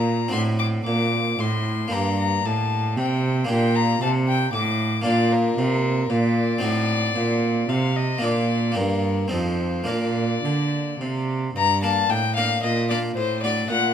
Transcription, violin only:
0.00 0.32 A#5 medium
0.32 0.40 C6 medium
0.59 0.67 D6 medium
0.86 1.42 D6 medium
1.40 1.95 C6 medium
1.93 2.18 A#5 medium
2.19 2.47 A#5 medium
2.45 2.97 A5 medium
2.99 3.49 G5 medium
3.50 3.77 G5 medium
3.75 4.01 A#5 medium
4.02 4.10 A5 medium
4.28 4.53 G5 medium
4.54 5.04 D6 medium
5.05 5.33 D5 medium
5.32 6.12 A#4 medium
6.10 7.70 D5 medium
7.69 7.98 F5 medium
7.96 8.25 D#5 medium
8.23 8.78 D5 medium
8.76 9.32 A#4 medium
9.32 9.90 C5 medium
9.88 11.36 D5 medium
11.57 11.81 A#5 medium
11.83 12.11 A5 medium
12.10 12.35 G5 medium
12.36 12.62 F5 medium
12.63 12.89 D#5 medium
12.89 12.97 D5 medium
13.16 13.42 C5 medium
13.43 13.69 D5 medium
13.70 13.94 F#5 medium

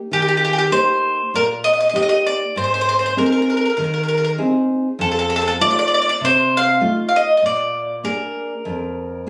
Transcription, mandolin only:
0.13 0.20 G4 medium
0.22 0.27 G4 medium
0.28 0.35 G4 medium
0.37 0.43 G4 medium
0.45 0.51 G4 medium
0.53 0.57 G4 soft
0.58 0.65 G4 medium
0.72 1.30 C5 medium
1.36 1.44 A#4 medium
1.64 1.72 D#5 medium
1.73 1.79 D#5 medium
1.81 1.87 D#5 medium
1.89 1.95 D#5 medium
1.96 2.01 D#5 medium
2.02 2.08 D#5 medium
2.09 2.18 D#5 medium
2.26 2.54 D5 medium
2.57 2.63 C5 medium
2.64 2.73 C5 medium
2.74 2.80 C5 medium
2.81 2.88 C5 medium
2.89 2.96 C5 medium
2.99 3.05 C5 medium
3.06 3.12 C5 medium
3.18 3.25 A#4 medium
3.26 3.31 A#4 soft
3.32 3.41 A#4 soft
3.42 3.49 A#4 soft
3.50 3.56 A#4 soft
3.57 3.64 A#4 soft
3.65 3.69 A#4 soft
3.70 3.76 A#4 soft
3.77 3.83 A#4 soft
3.84 3.93 A#4 soft
3.94 4.02 A#4 soft
4.03 4.07 A#4 soft
4.08 4.16 A#4 soft
4.18 4.23 A#4 soft
4.24 4.31 A#4 soft
5.01 5.08 A4 medium
5.12 5.17 A4 soft
5.19 5.25 A4 medium
5.30 5.35 A4 medium
5.36 5.40 A4 medium
5.42 5.46 A4 medium
5.48 5.54 A4 medium
5.61 5.69 D5 medium
5.71 5.78 D5 medium
5.79 5.86 D5 medium
5.88 5.93 D5 medium
5.94 6.00 D5 medium
6.02 6.08 D5 medium
6.09 6.15 D5 medium
6.25 6.54 C5 medium
6.57 7.06 F5 medium
7.09 7.16 F5 medium
7.16 7.36 D#5 medium
7.37 7.44 D#5 medium
7.46 8.02 D5 medium
8.05 9.23 A#4 medium

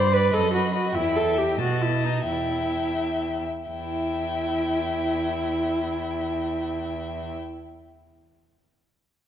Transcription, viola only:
0.00 0.15 C5 medium
0.13 0.35 B4 medium
0.34 0.53 A4 medium
0.53 0.74 F#4 medium
0.74 0.96 F#4 medium
0.95 1.18 E4 medium
1.16 1.39 A4 medium
1.38 1.59 G4 medium
1.61 1.83 F#4 medium
1.82 2.06 E4 medium
2.04 2.26 D#4 medium
2.27 3.42 E4 medium
3.69 7.34 E4 medium

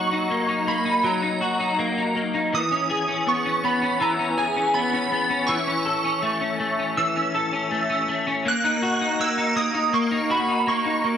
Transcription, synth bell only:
0.00 0.72 C#6 medium
0.68 1.06 B5 medium
1.06 2.13 A#5 medium
2.55 3.30 D#6 loud
3.28 3.66 C#6 medium
3.65 4.03 B5 medium
4.02 4.40 A#5 medium
4.38 4.76 G#5 medium
4.74 5.51 B5 medium
5.47 6.92 C#6 medium
6.97 8.05 E6 medium
8.48 9.23 F#6 loud
9.21 9.59 E6 medium
9.57 9.95 D#6 medium
9.94 10.32 C#6 medium
10.31 10.69 B5 medium
10.68 11.17 C#6 medium

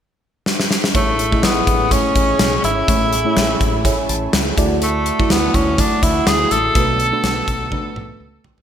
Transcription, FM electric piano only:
0.94 1.63 A2 medium
0.94 1.17 A3 medium
0.94 1.18 E4 medium
0.94 1.18 G#4 medium
0.94 1.18 C#5 medium
1.31 1.69 A3 medium
1.31 1.69 E4 medium
1.31 1.69 G#4 medium
1.31 1.37 D#5 medium
1.38 1.73 E5 medium
1.91 2.53 A3 medium
1.91 2.54 E4 medium
1.91 2.54 G#4 medium
1.91 2.54 C#5 medium
2.88 3.57 A2 medium
2.88 3.11 A3 medium
2.88 3.11 E4 medium
2.88 3.11 G#4 medium
2.88 3.12 C#5 medium
3.25 3.63 A3 medium
3.25 3.63 E4 medium
3.25 3.63 G#4 medium
3.25 3.63 C#5 medium
3.61 3.83 E5 medium
3.84 4.47 A3 medium
3.84 4.47 E4 medium
3.84 4.47 G#4 medium
3.84 4.48 C#5 medium
3.84 4.07 G#5 medium
4.09 4.32 A5 medium
4.33 4.56 B5 medium
4.57 5.26 D3 medium
4.57 5.06 A3 medium
4.57 5.06 E4 medium
4.57 5.06 F#4 medium
4.57 5.06 D5 medium
4.57 4.80 A5 medium
5.19 5.56 A3 medium
5.19 5.56 E4 medium
5.19 5.57 F#4 medium
5.19 5.57 D5 medium
5.78 6.40 A3 medium
5.78 6.41 E4 medium
5.78 6.41 F#4 medium
5.78 6.41 D5 medium
6.75 7.44 B2 medium
6.75 6.98 A3 medium
6.75 6.98 D4 medium
6.75 6.98 F#4 medium
6.75 6.99 B4 medium
7.12 7.50 A3 medium
7.12 7.50 D4 medium
7.12 7.50 F#4 medium
7.12 7.50 B4 medium
7.72 8.34 A3 medium
7.72 8.34 D4 medium
7.72 8.35 F#4 medium
7.72 8.35 B4 medium

